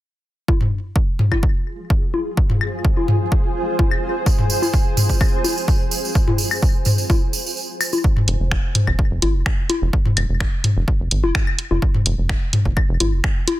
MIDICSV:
0, 0, Header, 1, 4, 480
1, 0, Start_track
1, 0, Key_signature, -4, "minor"
1, 0, Tempo, 472441
1, 492, Time_signature, 4, 2, 24, 8
1, 13817, End_track
2, 0, Start_track
2, 0, Title_t, "Ambient pad"
2, 0, Program_c, 0, 92
2, 492, Note_on_c, 0, 65, 86
2, 718, Note_on_c, 0, 68, 74
2, 1222, Note_on_c, 0, 80, 80
2, 1498, Note_on_c, 0, 72, 87
2, 8172, Note_off_c, 0, 65, 0
2, 8172, Note_off_c, 0, 68, 0
2, 8172, Note_off_c, 0, 72, 0
2, 8172, Note_off_c, 0, 80, 0
2, 13817, End_track
3, 0, Start_track
3, 0, Title_t, "Analog synth bass"
3, 0, Program_c, 1, 38
3, 8411, Note_on_c, 1, 29, 100
3, 8508, Note_off_c, 1, 29, 0
3, 8536, Note_on_c, 1, 29, 84
3, 8719, Note_off_c, 1, 29, 0
3, 9017, Note_on_c, 1, 29, 93
3, 9105, Note_off_c, 1, 29, 0
3, 9256, Note_on_c, 1, 29, 94
3, 9345, Note_off_c, 1, 29, 0
3, 9371, Note_on_c, 1, 32, 86
3, 9496, Note_on_c, 1, 29, 87
3, 9511, Note_off_c, 1, 32, 0
3, 9585, Note_off_c, 1, 29, 0
3, 9977, Note_on_c, 1, 29, 99
3, 10066, Note_off_c, 1, 29, 0
3, 10332, Note_on_c, 1, 29, 98
3, 10429, Note_off_c, 1, 29, 0
3, 10458, Note_on_c, 1, 29, 81
3, 10640, Note_off_c, 1, 29, 0
3, 10938, Note_on_c, 1, 29, 92
3, 11026, Note_off_c, 1, 29, 0
3, 11178, Note_on_c, 1, 29, 93
3, 11266, Note_off_c, 1, 29, 0
3, 11293, Note_on_c, 1, 32, 86
3, 11417, Note_on_c, 1, 29, 85
3, 11432, Note_off_c, 1, 32, 0
3, 11505, Note_off_c, 1, 29, 0
3, 11898, Note_on_c, 1, 29, 102
3, 11986, Note_off_c, 1, 29, 0
3, 12252, Note_on_c, 1, 29, 101
3, 12349, Note_off_c, 1, 29, 0
3, 12378, Note_on_c, 1, 29, 82
3, 12560, Note_off_c, 1, 29, 0
3, 12857, Note_on_c, 1, 29, 91
3, 12946, Note_off_c, 1, 29, 0
3, 13098, Note_on_c, 1, 29, 94
3, 13186, Note_off_c, 1, 29, 0
3, 13211, Note_on_c, 1, 32, 85
3, 13336, Note_on_c, 1, 29, 87
3, 13352, Note_off_c, 1, 32, 0
3, 13425, Note_off_c, 1, 29, 0
3, 13817, End_track
4, 0, Start_track
4, 0, Title_t, "Drums"
4, 491, Note_on_c, 9, 36, 107
4, 491, Note_on_c, 9, 61, 40
4, 593, Note_off_c, 9, 36, 0
4, 593, Note_off_c, 9, 61, 0
4, 617, Note_on_c, 9, 45, 88
4, 718, Note_off_c, 9, 45, 0
4, 972, Note_on_c, 9, 36, 108
4, 1073, Note_off_c, 9, 36, 0
4, 1211, Note_on_c, 9, 45, 87
4, 1313, Note_off_c, 9, 45, 0
4, 1337, Note_on_c, 9, 36, 56
4, 1337, Note_on_c, 9, 61, 42
4, 1337, Note_on_c, 9, 75, 63
4, 1439, Note_off_c, 9, 36, 0
4, 1439, Note_off_c, 9, 61, 0
4, 1439, Note_off_c, 9, 75, 0
4, 1452, Note_on_c, 9, 36, 109
4, 1553, Note_off_c, 9, 36, 0
4, 1932, Note_on_c, 9, 36, 110
4, 2033, Note_off_c, 9, 36, 0
4, 2171, Note_on_c, 9, 61, 43
4, 2273, Note_off_c, 9, 61, 0
4, 2411, Note_on_c, 9, 36, 114
4, 2513, Note_off_c, 9, 36, 0
4, 2537, Note_on_c, 9, 45, 91
4, 2638, Note_off_c, 9, 45, 0
4, 2652, Note_on_c, 9, 75, 63
4, 2754, Note_off_c, 9, 75, 0
4, 2891, Note_on_c, 9, 36, 113
4, 2993, Note_off_c, 9, 36, 0
4, 3018, Note_on_c, 9, 61, 44
4, 3119, Note_off_c, 9, 61, 0
4, 3132, Note_on_c, 9, 45, 91
4, 3233, Note_off_c, 9, 45, 0
4, 3371, Note_on_c, 9, 36, 114
4, 3473, Note_off_c, 9, 36, 0
4, 3851, Note_on_c, 9, 36, 115
4, 3851, Note_on_c, 9, 61, 44
4, 3952, Note_off_c, 9, 61, 0
4, 3953, Note_off_c, 9, 36, 0
4, 3977, Note_on_c, 9, 75, 64
4, 4078, Note_off_c, 9, 75, 0
4, 4329, Note_on_c, 9, 54, 41
4, 4331, Note_on_c, 9, 36, 113
4, 4431, Note_off_c, 9, 54, 0
4, 4433, Note_off_c, 9, 36, 0
4, 4456, Note_on_c, 9, 45, 86
4, 4558, Note_off_c, 9, 45, 0
4, 4569, Note_on_c, 9, 54, 87
4, 4670, Note_off_c, 9, 54, 0
4, 4697, Note_on_c, 9, 61, 46
4, 4702, Note_on_c, 9, 54, 54
4, 4799, Note_off_c, 9, 61, 0
4, 4804, Note_off_c, 9, 54, 0
4, 4810, Note_on_c, 9, 54, 39
4, 4811, Note_on_c, 9, 36, 115
4, 4912, Note_off_c, 9, 54, 0
4, 4913, Note_off_c, 9, 36, 0
4, 5051, Note_on_c, 9, 45, 88
4, 5051, Note_on_c, 9, 54, 86
4, 5152, Note_off_c, 9, 45, 0
4, 5153, Note_off_c, 9, 54, 0
4, 5175, Note_on_c, 9, 54, 52
4, 5177, Note_on_c, 9, 36, 59
4, 5277, Note_off_c, 9, 54, 0
4, 5278, Note_off_c, 9, 36, 0
4, 5290, Note_on_c, 9, 75, 61
4, 5291, Note_on_c, 9, 36, 122
4, 5291, Note_on_c, 9, 54, 39
4, 5392, Note_off_c, 9, 75, 0
4, 5393, Note_off_c, 9, 36, 0
4, 5393, Note_off_c, 9, 54, 0
4, 5530, Note_on_c, 9, 61, 45
4, 5531, Note_on_c, 9, 54, 84
4, 5632, Note_off_c, 9, 61, 0
4, 5633, Note_off_c, 9, 54, 0
4, 5663, Note_on_c, 9, 54, 56
4, 5764, Note_off_c, 9, 54, 0
4, 5771, Note_on_c, 9, 36, 115
4, 5779, Note_on_c, 9, 54, 38
4, 5873, Note_off_c, 9, 36, 0
4, 5881, Note_off_c, 9, 54, 0
4, 6007, Note_on_c, 9, 54, 95
4, 6109, Note_off_c, 9, 54, 0
4, 6144, Note_on_c, 9, 54, 57
4, 6245, Note_off_c, 9, 54, 0
4, 6251, Note_on_c, 9, 36, 110
4, 6251, Note_on_c, 9, 54, 36
4, 6353, Note_off_c, 9, 36, 0
4, 6353, Note_off_c, 9, 54, 0
4, 6377, Note_on_c, 9, 45, 86
4, 6377, Note_on_c, 9, 61, 44
4, 6478, Note_off_c, 9, 45, 0
4, 6478, Note_off_c, 9, 61, 0
4, 6485, Note_on_c, 9, 54, 91
4, 6586, Note_off_c, 9, 54, 0
4, 6616, Note_on_c, 9, 75, 64
4, 6617, Note_on_c, 9, 54, 51
4, 6718, Note_off_c, 9, 54, 0
4, 6718, Note_off_c, 9, 75, 0
4, 6731, Note_on_c, 9, 36, 119
4, 6737, Note_on_c, 9, 54, 37
4, 6833, Note_off_c, 9, 36, 0
4, 6839, Note_off_c, 9, 54, 0
4, 6960, Note_on_c, 9, 54, 83
4, 6971, Note_on_c, 9, 45, 87
4, 7062, Note_off_c, 9, 54, 0
4, 7073, Note_off_c, 9, 45, 0
4, 7093, Note_on_c, 9, 54, 55
4, 7194, Note_off_c, 9, 54, 0
4, 7209, Note_on_c, 9, 54, 41
4, 7211, Note_on_c, 9, 36, 119
4, 7212, Note_on_c, 9, 61, 47
4, 7311, Note_off_c, 9, 54, 0
4, 7313, Note_off_c, 9, 36, 0
4, 7313, Note_off_c, 9, 61, 0
4, 7448, Note_on_c, 9, 54, 88
4, 7550, Note_off_c, 9, 54, 0
4, 7584, Note_on_c, 9, 54, 52
4, 7686, Note_off_c, 9, 54, 0
4, 7690, Note_on_c, 9, 54, 43
4, 7792, Note_off_c, 9, 54, 0
4, 7930, Note_on_c, 9, 54, 89
4, 7931, Note_on_c, 9, 75, 62
4, 8032, Note_off_c, 9, 54, 0
4, 8033, Note_off_c, 9, 75, 0
4, 8052, Note_on_c, 9, 54, 57
4, 8056, Note_on_c, 9, 61, 45
4, 8154, Note_off_c, 9, 54, 0
4, 8158, Note_off_c, 9, 61, 0
4, 8171, Note_on_c, 9, 36, 114
4, 8273, Note_off_c, 9, 36, 0
4, 8297, Note_on_c, 9, 45, 92
4, 8399, Note_off_c, 9, 45, 0
4, 8410, Note_on_c, 9, 42, 88
4, 8512, Note_off_c, 9, 42, 0
4, 8651, Note_on_c, 9, 26, 93
4, 8651, Note_on_c, 9, 36, 114
4, 8752, Note_off_c, 9, 26, 0
4, 8753, Note_off_c, 9, 36, 0
4, 8890, Note_on_c, 9, 42, 90
4, 8890, Note_on_c, 9, 45, 91
4, 8992, Note_off_c, 9, 42, 0
4, 8992, Note_off_c, 9, 45, 0
4, 9016, Note_on_c, 9, 75, 66
4, 9017, Note_on_c, 9, 36, 58
4, 9117, Note_off_c, 9, 75, 0
4, 9118, Note_off_c, 9, 36, 0
4, 9131, Note_on_c, 9, 36, 116
4, 9233, Note_off_c, 9, 36, 0
4, 9370, Note_on_c, 9, 42, 90
4, 9370, Note_on_c, 9, 61, 51
4, 9472, Note_off_c, 9, 42, 0
4, 9472, Note_off_c, 9, 61, 0
4, 9611, Note_on_c, 9, 26, 97
4, 9611, Note_on_c, 9, 36, 116
4, 9712, Note_off_c, 9, 26, 0
4, 9713, Note_off_c, 9, 36, 0
4, 9850, Note_on_c, 9, 61, 78
4, 9851, Note_on_c, 9, 42, 91
4, 9952, Note_off_c, 9, 42, 0
4, 9952, Note_off_c, 9, 61, 0
4, 10091, Note_on_c, 9, 36, 119
4, 10193, Note_off_c, 9, 36, 0
4, 10216, Note_on_c, 9, 45, 96
4, 10317, Note_off_c, 9, 45, 0
4, 10331, Note_on_c, 9, 42, 91
4, 10331, Note_on_c, 9, 75, 66
4, 10432, Note_off_c, 9, 75, 0
4, 10433, Note_off_c, 9, 42, 0
4, 10571, Note_on_c, 9, 26, 94
4, 10571, Note_on_c, 9, 36, 120
4, 10673, Note_off_c, 9, 26, 0
4, 10673, Note_off_c, 9, 36, 0
4, 10810, Note_on_c, 9, 45, 91
4, 10811, Note_on_c, 9, 42, 96
4, 10912, Note_off_c, 9, 45, 0
4, 10913, Note_off_c, 9, 42, 0
4, 11051, Note_on_c, 9, 36, 119
4, 11153, Note_off_c, 9, 36, 0
4, 11291, Note_on_c, 9, 42, 96
4, 11392, Note_off_c, 9, 42, 0
4, 11415, Note_on_c, 9, 61, 79
4, 11517, Note_off_c, 9, 61, 0
4, 11530, Note_on_c, 9, 26, 96
4, 11531, Note_on_c, 9, 36, 122
4, 11632, Note_off_c, 9, 26, 0
4, 11633, Note_off_c, 9, 36, 0
4, 11656, Note_on_c, 9, 75, 64
4, 11758, Note_off_c, 9, 75, 0
4, 11771, Note_on_c, 9, 42, 93
4, 11872, Note_off_c, 9, 42, 0
4, 11897, Note_on_c, 9, 61, 55
4, 11998, Note_off_c, 9, 61, 0
4, 12011, Note_on_c, 9, 36, 120
4, 12113, Note_off_c, 9, 36, 0
4, 12136, Note_on_c, 9, 45, 90
4, 12238, Note_off_c, 9, 45, 0
4, 12251, Note_on_c, 9, 42, 95
4, 12352, Note_off_c, 9, 42, 0
4, 12491, Note_on_c, 9, 26, 91
4, 12491, Note_on_c, 9, 36, 118
4, 12592, Note_off_c, 9, 26, 0
4, 12593, Note_off_c, 9, 36, 0
4, 12731, Note_on_c, 9, 42, 94
4, 12731, Note_on_c, 9, 45, 91
4, 12832, Note_off_c, 9, 42, 0
4, 12832, Note_off_c, 9, 45, 0
4, 12857, Note_on_c, 9, 36, 62
4, 12958, Note_off_c, 9, 36, 0
4, 12971, Note_on_c, 9, 36, 124
4, 12971, Note_on_c, 9, 75, 67
4, 13073, Note_off_c, 9, 36, 0
4, 13073, Note_off_c, 9, 75, 0
4, 13211, Note_on_c, 9, 42, 97
4, 13212, Note_on_c, 9, 61, 54
4, 13313, Note_off_c, 9, 42, 0
4, 13313, Note_off_c, 9, 61, 0
4, 13451, Note_on_c, 9, 26, 96
4, 13451, Note_on_c, 9, 36, 120
4, 13552, Note_off_c, 9, 26, 0
4, 13553, Note_off_c, 9, 36, 0
4, 13691, Note_on_c, 9, 42, 97
4, 13691, Note_on_c, 9, 61, 82
4, 13793, Note_off_c, 9, 42, 0
4, 13793, Note_off_c, 9, 61, 0
4, 13817, End_track
0, 0, End_of_file